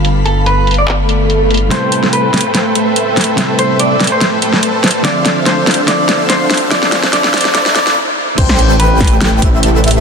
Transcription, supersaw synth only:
X:1
M:4/4
L:1/8
Q:"Swing 16ths" 1/4=144
K:Am
V:1 name="Supersaw synth"
z8 | [A,ABcg]4- [A,ABcg] [A,ABce]3 | [A,ABce]4- [A,ABce] [A,ABcg] [A,ABca]2 | [DAcef]4 [DAcef]4 |
[DAcef]2 [DAcef]2 [DAcef] [DAcef] z2 | [A,ABcg]4- [A,ABcg] [A,ABce]3 |]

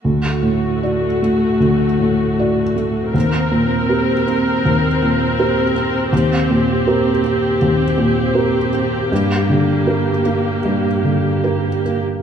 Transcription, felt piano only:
X:1
M:4/4
L:1/8
Q:1/4=79
K:Dphr
V:1 name="Felt piano"
D,, A,, [^Fd] A, D,, A,, [Fd] A, | E,, B,, [GB] C E,, B,, [GB] C | E,, B,, [GB] C E,, B,, [GB] C | G,, D, [GB] B, G,, D, [GB] B, |]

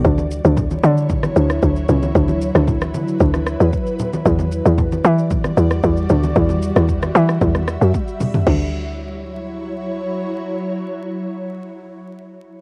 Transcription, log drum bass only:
X:1
M:4/4
L:1/16
Q:1/4=114
K:D
V:1 name="Log drum bass" clef=bass
D,,3 D,,3 D,4 D,,2 D,,2 C,,2 | D,,3 D,,3 D,2 D,,3 E,, z4 | E,,3 E,,3 E,4 E,,2 E,,2 D,,2 | E,,3 E,,3 E,2 E,,3 F,, z4 |
D,,16- | D,,16 |]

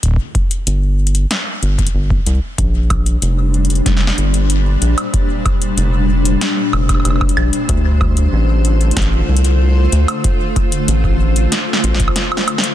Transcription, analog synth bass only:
X:1
M:4/4
L:1/8
Q:1/4=94
K:Bblyd
V:1 name="Analog synth bass" clef=bass
z2 G,,,2 z G,,, G,,, C,, | B,,,2 F,,,2 F,,, G,,,2 B,,, | z2 F,,,2 z F,,, F,,, B,,, | D,,2 A,,,2 A,,, C,,2 D,, |
z2 A,,,2 z A,,, z2 |]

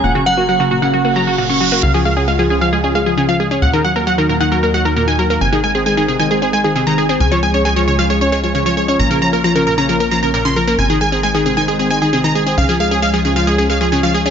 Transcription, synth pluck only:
X:1
M:4/4
L:1/16
Q:1/4=134
K:Db
V:1 name="Synth pluck" clef=bass
B,, D, G, B, G, D, B,, D, G, B, G, D, B,, D, G, B, | D, F, A, D A, F, D, F, A, D A, F, D, F, A, D | B,, E, G, B, G, E, B,, E, G, B, G, E, B,, E, G, B, | C, E, A, C A, E, C, E, A, C A, E, C, E, A, C |
D, F, A, D A, F, D, F, A, D A, F, D, F, A, D | B,, D, F, B, F, D, B,, D, F, B, F, D, B,, D, F, B, | C, E, A, C A, E, C, E, A, C A, E, C, E, A, C | D, F, A, D A, F, D, F, A, D A, F, D, F, A, D |]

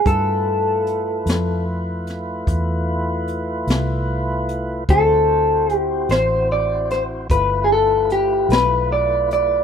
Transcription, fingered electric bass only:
X:1
M:12/8
L:1/8
Q:3/8=50
K:G
V:1 name="Fingered electric bass" clef=bass
G,,3 =F,,3 E,,3 C,,3 | D,,3 A,,,3 G,,,3 B,,,3 |]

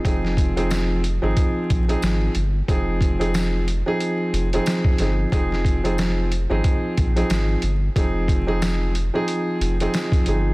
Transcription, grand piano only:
X:1
M:4/4
L:1/16
Q:"Swing 16ths" 1/4=91
K:Fm
V:1 name="Grand piano"
[F,CEA]3 [F,CEA]3 z [F,CEA]4 [F,CEA]3 z2 | [F,CEA]3 [F,CEA]3 z [F,CEA]4 [F,CEA]3 [F,CEA]2 | [F,CEA]3 [F,CEA]3 z [F,CEA]4 [F,CEA]3 z2 | [F,CEA]3 [F,CEA]3 z [F,CEA]4 [F,CEA]3 [F,CEA]2 |]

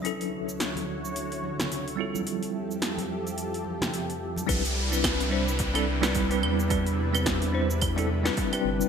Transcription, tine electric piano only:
X:1
M:4/4
L:1/16
Q:"Swing 16ths" 1/4=108
K:Clyd
V:1 name="Tine electric piano"
[F,^CDEA]12- [F,CDEA]2 [G,=CE=FA]2- | [G,CE=FA]16 | [G,CDEB] z2 [G,CDEB]3 [G,CDEc] z2 [G,CDEA] z [G,CDEB]2 [G,CDEB]3 | [G,CDEB] z2 [G,CDEB]3 [G,CDEc] z2 [G,CDEA] z [G,CDEB]2 [G,CDEB]3 |]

